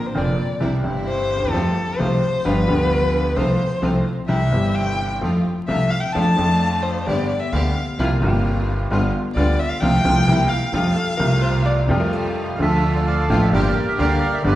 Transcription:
0.06 violin C5
0.15 upright piano F1 F2 D3 A#3 C4 F4, upright bass F1, string section A#3 C4 D4, violin D5
0.60 upright piano C2 C3 E3 G3 C4 G4, upright bass C2, string section G3 C4 E4
0.82 upright piano G1 G2 E3 G3 C4 G4, upright bass G1, string section G3 C4 E4
1.08 violin C5
1.36 upright piano D2, upright bass D2
1.42 upright piano D#2, upright bass D#2
1.47 upright piano E2, upright bass E2, violin A4
1.53 upright piano F2 F3 A3 C4 G4, upright bass F2, string section G3 A3 F4
1.98 upright piano C2 C3 F3 A3 C4 G4, upright bass C2, string section G3 A3 F4, violin C5
2.45 upright piano G1 G2 F3 B3 D4 G4, upright bass G1, string section G3 B3 F4, violin B4
2.67 upright bass D2, upright piano D2 D3 F3 B3 D4 G4, string section G3 B3 F4
3.36 upright bass C2, upright piano C2 C3 F3 A3 C4 A4, string section A3 C4 F4, violin C5
3.82 upright bass C2, upright piano C2 C3 F3 A3 C4 A4, string section A3 C4 F4
4.28 upright piano C2 C3 E3 G3 C4 G4, upright bass C2, string section G3 C4 E4, violin E5
4.50 upright piano G1 G2 E3 G3 C4 G4, upright bass G1, string section G3 C4 E4
4.75 violin G5
5.21 upright piano F2 F3 A3 C4 A4, upright bass F2, string section A3 C4 F4
5.68 upright piano C2 C3 F3 A3 C4 A4, upright bass C2, string section A3 C4 F4, violin E5
5.90 violin F5
6.00 violin G5
6.12 upright piano F2 F3 A3 D4 A4, upright bass F2, string section A3 D4 F4, violin A5
6.36 upright bass F2, upright piano F2 F3 A3 D4, string section A3 D4 F4
6.40 upright piano A4
6.82 violin C5
7.05 upright piano G1 G2 D3 G3 B3 G4, upright bass G1, string section B3 D4 G4, violin D5
7.28 violin D5
7.40 violin E5
7.52 upright bass D2, upright piano D2 D3 G3 B3 G4, string section B3 D4 G4, violin F5
7.99 upright bass C2, upright piano C2 C3 G3 A#3 F4, string section A#3 C4 F4, hollow-body jazz guitar E4
8.11 hollow-body jazz guitar F4
8.20 upright bass G1, upright piano G1 G2 C3 G3 A#3 F4, string section A#3 C4 F4, hollow-body jazz guitar G4
8.91 upright bass G1, upright piano G1 G2 D3 G3 B3 F4, string section G3 B3 F4
9.35 upright bass D2, upright piano D2 D3 G3 B3 F4, string section G3 B3 F4, violin D5
9.59 violin E5
9.69 violin F5
9.81 upright bass C2, upright piano C2 C3 F3 A3 F4, string section A3 C4 F4, violin G5
10.04 upright bass C2, upright piano C2 C3 F3 A3 F4, string section A3 C4 F4
10.26 upright bass C2, upright piano C2 C3 G3 A#3 E4, string section A#3 C4 E4
10.49 violin F5
10.72 upright bass F2, upright piano F2 C3 F3 G3 A3 F4, string section G3 A3 F4
10.96 hollow-body jazz guitar A4
11.17 upright bass C2, upright piano C2 C3 G3 A3, string section G3 A3 F4, hollow-body jazz guitar A#4
11.22 upright piano F4
11.42 hollow-body jazz guitar C5
11.66 hollow-body jazz guitar D5
11.87 upright bass F2, upright piano F2 C3 F3 G3 A3, string section G3 A3 F4
11.91 upright piano F4
12.00 hollow-body jazz guitar A#4
12.13 hollow-body jazz guitar A4
12.55 upright bass D2, upright piano D3, string section D4, bandoneon F5
12.60 upright piano D2 F3 A3 F4, string section A3 F4, bandoneon A4 E5
12.96 bandoneon D5
13.06 bandoneon A4 D5 F5
13.29 upright bass A1, upright piano A1 A2 D3 F3 A3 F4, string section A3 D4 F4
13.41 bandoneon E5
13.52 upright bass G1, upright piano G1 G2 D3 G3 A#3 G4, string section A#3 D4 G4, bandoneon G4 A#4 D5
13.61 bandoneon C5
13.67 bandoneon D5
13.88 bandoneon E5
13.98 upright piano D2 D3 G3 A#3 G4, upright bass D2, string section A#3 D4 G4, bandoneon A#4 D5 F5
14.33 bandoneon E5
14.42 upright piano G1 G2 D3 G3 B3, upright bass G1, string section B3 D4 G4, bandoneon D5
14.46 upright piano G4, bandoneon G4 B4

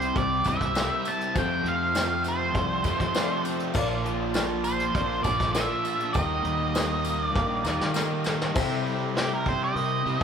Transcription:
Already playing: fingered electric bass C2, overdriven electric guitar C3 G3 C4 E4, tonewheel organ C4 E4 G4 C5, lead electric guitar C5
0.01 closed hi-hat
0.15 fingered electric bass C2, overdriven electric guitar C3, upright piano E4 G4 C5, lead electric guitar D5, kick, closed hi-hat
0.44 fingered electric bass C2, overdriven electric guitar G3 C4 E4, kick, closed hi-hat, tambourine
0.48 overdriven electric guitar C3, lead electric guitar E5
0.61 fingered electric bass C2, kick, closed hi-hat
0.74 overdriven electric guitar C3 G3 C4, upright piano E4 G4 A#4, snare, closed hi-hat, tambourine
0.79 overdriven electric guitar E4
1.05 overdriven electric guitar E4, lead electric guitar A5, closed hi-hat, tambourine
1.21 closed hi-hat
1.34 overdriven electric guitar F2 C3 F3 A3, fingered electric bass F2, tonewheel organ C4 F4 A4 C5, upright piano F4 A4 C5, kick, closed hi-hat, tambourine
1.38 overdriven electric guitar C4, lead electric guitar G5
1.64 fingered electric bass F2, overdriven electric guitar F3, closed hi-hat
1.68 lead electric guitar F5
1.94 overdriven electric guitar C4, upright piano F4 A4 C5, snare, closed hi-hat, tambourine
2.24 overdriven electric guitar A3, closed hi-hat, tambourine
2.28 lead electric guitar C5
2.54 fingered electric bass C2, overdriven electric guitar C3, upright piano F4 A4 C5, kick, closed hi-hat
2.84 fingered electric bass F2, overdriven electric guitar F2 C3 F3 A3 C4, kick, closed hi-hat, tambourine
3.00 fingered electric bass F3, kick, snare, closed hi-hat
3.14 overdriven electric guitar F2 C3 F3 A3, upright piano F4 A4 D5, snare, closed hi-hat, tambourine
3.18 overdriven electric guitar C4
3.44 overdriven electric guitar C4, closed hi-hat, tambourine
3.60 closed hi-hat
3.73 fingered electric bass A#1, overdriven electric guitar A#2 F3 A#3 D4, tonewheel organ D4 F4 A#4 D5, upright piano F4 A#4 D5, kick, tambourine, crash
4.04 overdriven electric guitar F3, closed hi-hat
4.34 overdriven electric guitar D4, upright piano F4 A#4 D5, snare, closed hi-hat, tambourine
4.64 overdriven electric guitar A#3, lead electric guitar C5, closed hi-hat, tambourine
4.80 closed hi-hat
4.94 fingered electric bass A#1, overdriven electric guitar A#2, upright piano F4 A#4 D5, kick, closed hi-hat
5.23 fingered electric bass A#1, overdriven electric guitar F3 A#3 D4, lead electric guitar D5, kick, closed hi-hat, tambourine
5.28 overdriven electric guitar A#2
5.40 fingered electric bass A#1, kick, snare, closed hi-hat
5.53 overdriven electric guitar A#2 F3 A#3, upright piano F4 A#4 D5, lead electric guitar E5, snare, closed hi-hat, tambourine
5.57 overdriven electric guitar A#3 D4
5.85 overdriven electric guitar D4, closed hi-hat, tambourine
6.00 closed hi-hat
6.13 fingered electric bass D#2, overdriven electric guitar D#3 G3, tonewheel organ D#4 G4 A#4 D#5, upright piano G4 A#4 D#5, lead electric guitar D#5, kick, closed hi-hat, tambourine
6.17 overdriven electric guitar A#3 D#4
6.44 fingered electric bass D#2, overdriven electric guitar G3, closed hi-hat
6.74 overdriven electric guitar D#4, upright piano G4 A#4 D#5, snare, closed hi-hat, tambourine
7.04 overdriven electric guitar A#3, closed hi-hat, tambourine
7.26 lead electric guitar D5
7.34 fingered electric bass A#1, overdriven electric guitar D#3, upright piano G4 A#4 F5, kick, snare, tambourine
7.64 fingered electric bass D#2, overdriven electric guitar D#3 G3 A#3 D#4, upright piano A#5, snare, tambourine
7.80 fingered electric bass D#3, snare
7.93 overdriven electric guitar D#3 G3 A#3 D#4, upright piano G4 A#4 D#5 G5, snare, tambourine
8.10 upright piano D#5
8.24 overdriven electric guitar D#4, snare, tambourine
8.41 snare
8.53 overdriven electric guitar C3 G3 C4, fingered electric bass C3, tonewheel organ C4 E4 G4 C5, upright piano E4 G4 C5, kick, crash
8.57 overdriven electric guitar E4
8.85 overdriven electric guitar G3, open hi-hat
9.14 upright piano E4 G4 C5, overdriven electric guitar E4, lead electric guitar G4, snare, open hi-hat
9.35 lead electric guitar A#4
9.45 overdriven electric guitar C4, lead electric guitar C5, kick, open hi-hat
9.64 lead electric guitar D#5
9.74 overdriven electric guitar C3, fingered electric bass C3, upright piano E4 G4 A#4, open hi-hat
10.05 fingered electric bass C3, overdriven electric guitar G3 C4 E4, open hi-hat
10.09 overdriven electric guitar C3

